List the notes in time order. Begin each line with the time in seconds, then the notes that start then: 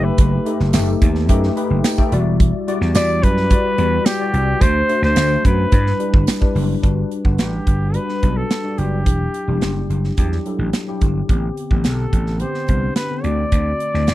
Already playing: A3 D#4 G4 B4
0.04 B4
0.18 F#1, kick, closed hi-hat
0.45 A3 D#4 G4 A4, closed hi-hat
0.60 F#1, snare
0.73 F#1 A3 D#4 G4 A4, snare, closed hi-hat, tambourine
1.02 D#2, kick, closed hi-hat
1.15 snare
1.29 F#2 A3 D#4 G4 B4, kick, closed hi-hat
1.43 snare
1.56 A3 D#4 G4 B4 B5, closed hi-hat
1.70 F#1
1.84 G5, snare, closed hi-hat, tambourine
1.98 A3 D#4 G4 A4 G5, kick
2.12 E1 G3 E4 F#4 D5 E5, closed hi-hat
2.40 kick, closed hi-hat
2.67 G3 E4 F#4 D5, closed hi-hat
2.81 E2, snare
2.95 E2 G3 E4 F#4 D5, snare, closed hi-hat, tambourine
3.23 F#2 B4, kick, closed hi-hat
3.37 snare
3.50 G3 E4 F#4 D5, kick, closed hi-hat
3.78 E2 G3 E4 F#4 B4, closed hi-hat
4.06 G4, snare, closed hi-hat, tambourine
4.20 G3 E4 F#4 D5
4.33 C2, closed hi-hat
4.61 D2 A3 D4 F#4 C5, kick, closed hi-hat
4.89 A3 D4 F#4 C5, closed hi-hat
5.02 D2 C5, snare
5.16 D2 A3 D4 F#4 C5, snare, closed hi-hat, tambourine
5.45 F#2 B4, kick, closed hi-hat
5.72 G2 G3 D4 E4 B4, kick, closed hi-hat
5.87 snare
5.99 G3 D4 E4 B4, closed hi-hat
6.14 G1, kick
6.27 snare, closed hi-hat, tambourine
6.41 G3 D4 E4 B4, kick
6.55 F#1, open hi-hat
6.83 G1 G3 D4 F#4 B4, kick, closed hi-hat
7.11 closed hi-hat
7.24 G1 G3 D4 A4 F#5, kick
7.32 B4
7.38 A1 G4, snare, closed hi-hat
7.67 G1, kick, closed hi-hat
7.94 G3 D4 F#4 B4, closed hi-hat
8.09 snare
8.22 B1 G3 D4 F#4 B4, kick, closed hi-hat
8.37 A4
8.50 snare, closed hi-hat
8.64 G3 D4 F#4 D5
8.78 F#1 G4, closed hi-hat
9.06 E1 F#3 D4 E4 G4, kick, closed hi-hat
9.34 closed hi-hat
9.48 E1 G3 D4 E4 G4
9.61 F#1, snare, closed hi-hat
9.90 F#1, closed hi-hat
10.04 snare
10.17 E2 F#3 D4 E4 G4, kick, closed hi-hat
10.32 snare
10.46 F#3 D4 E4 A4, closed hi-hat
10.59 A1
10.73 snare, closed hi-hat
10.87 F#3 D4 E4 G4
11.01 G1, kick, closed hi-hat
11.29 A1 D3 B3 C4 G4, kick, closed hi-hat
11.57 closed hi-hat
11.71 A1 D3 B3 C4 G4, kick
11.84 B1 A4, snare, closed hi-hat
12.13 A1, kick, closed hi-hat
12.27 snare
12.40 D3 B3 C4 G4 C5, closed hi-hat
12.54 snare
12.68 C2 D3 B3 C4 D4, kick, closed hi-hat
12.96 B4, snare, closed hi-hat
13.10 D3 B3 C4 A4
13.24 D2 D3 A3 C4 F#4 D5, closed hi-hat
13.52 D2, kick, closed hi-hat
13.80 closed hi-hat
13.93 D2 D3 A3 C4 E4, snare
14.07 D2, snare, closed hi-hat